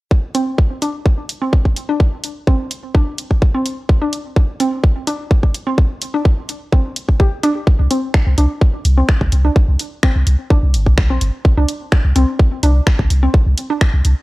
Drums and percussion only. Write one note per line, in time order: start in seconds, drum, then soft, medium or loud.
0.11 kick loud
0.35 open hi-hat medium
0.58 kick loud
0.82 open hi-hat medium
1.06 kick loud
1.29 open hi-hat medium
1.53 kick loud
1.65 kick medium
1.76 open hi-hat medium
2.00 kick loud
2.24 open hi-hat medium
2.47 kick loud
2.71 open hi-hat medium
2.95 kick loud
3.18 open hi-hat medium
3.31 kick medium
3.42 kick loud
3.66 open hi-hat medium
3.89 kick loud
4.13 open hi-hat medium
4.36 kick loud
4.60 open hi-hat medium
4.84 kick loud
5.07 open hi-hat medium
5.31 kick loud
5.43 kick medium
5.55 open hi-hat medium
5.78 kick loud
6.02 open hi-hat medium
6.25 kick loud
6.49 open hi-hat medium
6.73 kick loud
6.96 open hi-hat medium
7.09 kick medium
7.20 kick loud
7.43 open hi-hat medium
7.67 kick loud
7.91 open hi-hat medium
8.14 finger snap medium
8.14 kick loud
8.38 open hi-hat medium
8.61 kick loud
8.85 open hi-hat medium
9.09 finger snap medium
9.09 kick loud
9.21 kick medium
9.32 open hi-hat medium
9.56 kick loud
9.80 open hi-hat medium
10.03 finger snap medium
10.03 kick loud
10.27 open hi-hat medium
10.50 kick loud
10.74 open hi-hat medium
10.86 kick medium
10.98 finger snap medium
10.98 kick loud
11.21 open hi-hat medium
11.45 kick loud
11.69 open hi-hat loud
11.92 finger snap medium
11.92 kick loud
12.16 open hi-hat loud
12.39 kick loud
12.63 open hi-hat medium
12.87 finger snap medium
12.87 kick loud
12.99 kick medium
13.10 open hi-hat medium
13.34 kick loud
13.58 open hi-hat medium
13.81 finger snap medium
13.81 kick loud
14.05 open hi-hat medium